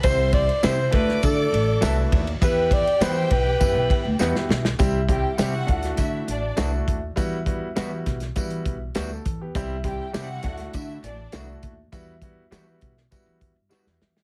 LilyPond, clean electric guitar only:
\new Staff \with { instrumentName = "Clean electric guitar" } { \time 4/4 \key e \minor \tempo 4 = 101 r4 <c' e' g' c''>8 r4. <fis a e' a'>8 r8 | r4 <g b fis' b'>8 r4. <g b fis' b'>8 r8 | r4 <g c' e' g'>8 r4. <e a d' fis'>8 r8 | r4 <g b e' fis'>8 r4. <g b e' fis'>8 r8 |
r4 <g c' e' g'>8 r4. <e a d' fis'>8 r8 | r4 <g b e' fis'>8 r4. <g b e' fis'>8 r8 | }